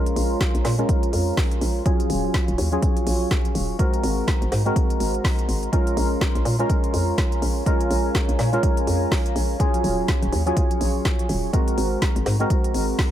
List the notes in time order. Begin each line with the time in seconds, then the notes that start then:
Already playing: G#3 C#4 F4 A#4 C#5 F5 G#5 C6
0.06 closed hi-hat
0.16 A#1, open hi-hat
0.41 kick, snare, closed hi-hat
0.55 A#1, closed hi-hat
0.65 A#2, snare, open hi-hat
0.78 G#3 C#4 F4 A#4, closed hi-hat
0.89 kick, closed hi-hat
1.03 closed hi-hat
1.13 F2, open hi-hat
1.37 kick, snare, open hi-hat
1.51 closed hi-hat
1.61 A#1, open hi-hat
1.85 F#3 C#4 F4 G#4 F5 C#6, kick, closed hi-hat
2.00 closed hi-hat
2.10 D#1, open hi-hat
2.34 kick, snare, closed hi-hat
2.48 D#1, closed hi-hat
2.58 D#2, open hi-hat
2.72 F#3 C#4 F4 G#4, closed hi-hat
2.82 kick, closed hi-hat
2.97 closed hi-hat
3.07 A#1, open hi-hat
3.31 kick, snare, closed hi-hat
3.45 closed hi-hat
3.55 D#1, open hi-hat
3.79 G#3 C4 F#4 A#4 D#5 A#5 C6, kick, closed hi-hat
3.94 closed hi-hat
4.03 G#1, open hi-hat
4.28 kick, snare, closed hi-hat
4.42 G#1, closed hi-hat
4.52 G#2, snare, open hi-hat
4.65 G#3 C4 F#4 A#4, closed hi-hat
4.76 kick, closed hi-hat
4.90 closed hi-hat
5.00 G#1, open hi-hat
5.15 closed hi-hat
5.24 kick, snare, open hi-hat
5.39 closed hi-hat
5.49 G#1, open hi-hat
5.63 closed hi-hat
5.72 G#3 C#4 F4 A#4 C#5 F5 G#5, kick, closed hi-hat
5.87 closed hi-hat
5.97 A#1, open hi-hat
6.21 kick, snare, closed hi-hat
6.35 A#1, closed hi-hat
6.45 A#2, open hi-hat
6.59 G#3 C#4 F4 A#4, closed hi-hat
6.70 kick, closed hi-hat
6.84 closed hi-hat
6.94 F2, open hi-hat
7.18 kick, snare, closed hi-hat
7.32 closed hi-hat
7.42 A#1, open hi-hat
7.66 G#3 C#4 F4 A#4 A#5, kick, closed hi-hat
7.81 closed hi-hat
7.91 A#1, open hi-hat
8.15 kick, snare, closed hi-hat
8.29 A#1, closed hi-hat
8.39 A#2, snare, open hi-hat
8.52 G#3 C#4 F4 A#4, closed hi-hat
8.63 kick, closed hi-hat
8.77 closed hi-hat
8.87 F2, open hi-hat
9.11 kick, snare, open hi-hat
9.26 closed hi-hat
9.36 A#1, open hi-hat
9.59 F#3 C#4 F4 G#4 C#6, kick, closed hi-hat
9.74 closed hi-hat
9.84 D#1, open hi-hat
10.08 kick, snare, closed hi-hat
10.22 D#1, closed hi-hat
10.32 D#2, open hi-hat
10.46 F#3 C#4 F4 G#4, closed hi-hat
10.57 kick, closed hi-hat
10.71 closed hi-hat
10.81 A#1, open hi-hat
11.05 kick, snare, closed hi-hat
11.19 closed hi-hat
11.29 D#1, open hi-hat
11.53 G#3 C4 F#4 A#4 D#5 A#5 C6, kick, closed hi-hat
11.68 closed hi-hat
11.78 G#1, open hi-hat
12.02 kick, snare, closed hi-hat
12.16 G#1, closed hi-hat
12.26 G#2, snare, open hi-hat
12.39 G#3 C4 F#4 A#4, closed hi-hat
12.50 kick, closed hi-hat
12.64 closed hi-hat
12.74 G#1, open hi-hat
12.99 kick, snare, open hi-hat